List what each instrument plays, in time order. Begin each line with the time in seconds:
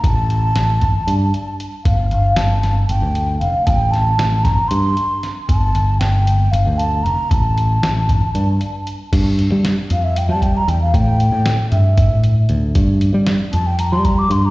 0.04 picked electric bass A1, flute A5, kick, closed hi-hat
0.30 closed hi-hat
0.56 picked electric bass A1, snare, closed hi-hat
0.81 picked electric bass G1, kick, closed hi-hat
1.07 picked electric bass G2, closed hi-hat
1.34 closed hi-hat
1.60 closed hi-hat
1.84 picked electric bass G1, flute F5, kick, closed hi-hat
2.11 picked electric bass G1, closed hi-hat
2.36 picked electric bass G1, flute A5, snare, closed hi-hat
2.63 snare, closed hi-hat
2.89 picked electric bass G1, flute G5, closed hi-hat
3.02 picked electric bass D2
3.15 closed hi-hat
3.40 picked electric bass F1, flute F5, closed hi-hat
3.66 picked electric bass A1, flute G5 A5, kick, closed hi-hat
3.91 flute A5, snare, closed hi-hat
4.18 picked electric bass A1, snare, closed hi-hat
4.44 picked electric bass G1, flute A#5, kick, snare, closed hi-hat
4.68 picked electric bass G2, flute C6, closed hi-hat
4.97 closed hi-hat
5.23 snare, closed hi-hat
5.48 picked electric bass G1, flute A5, kick, closed hi-hat
5.75 picked electric bass G1, closed hi-hat
5.99 picked electric bass G1, flute G5, snare, closed hi-hat
6.27 closed hi-hat
6.52 picked electric bass G1, flute F5, closed hi-hat
6.66 picked electric bass D2
6.78 flute A5, closed hi-hat
7.03 picked electric bass F1, flute A#5, closed hi-hat
7.30 picked electric bass A1, flute A5, kick, closed hi-hat
7.58 closed hi-hat
7.82 picked electric bass A1, snare, closed hi-hat
8.09 picked electric bass G1, kick, closed hi-hat
8.35 picked electric bass G2, closed hi-hat
8.61 closed hi-hat
8.87 closed hi-hat
9.13 picked electric bass G2, kick, closed hi-hat, crash
9.39 closed hi-hat
9.52 picked electric bass G3
9.65 snare, closed hi-hat
9.90 picked electric bass F2, flute F5, closed hi-hat
10.04 flute E5
10.16 flute G5, closed hi-hat
10.29 picked electric bass G3, flute A5
10.42 flute G5, kick, closed hi-hat
10.57 flute A#5
10.68 picked electric bass E2, flute G5, closed hi-hat
10.82 flute F5
10.94 picked electric bass A2, flute G5, kick, closed hi-hat
11.20 closed hi-hat
11.32 picked electric bass A2
11.46 snare, closed hi-hat
11.72 picked electric bass G2, flute E5, closed hi-hat
11.98 kick, closed hi-hat
12.10 picked electric bass A2
12.24 closed hi-hat
12.49 picked electric bass D2, closed hi-hat
12.75 picked electric bass G2, kick, closed hi-hat
13.01 closed hi-hat
13.14 picked electric bass G3
13.27 snare, closed hi-hat
13.53 picked electric bass F2, flute A5, closed hi-hat
13.67 flute G5
13.79 flute A#5, closed hi-hat
13.92 picked electric bass G3, flute C6
14.05 flute A#5, kick, closed hi-hat
14.18 flute D6
14.30 picked electric bass G2, flute C6, closed hi-hat
14.45 flute A#5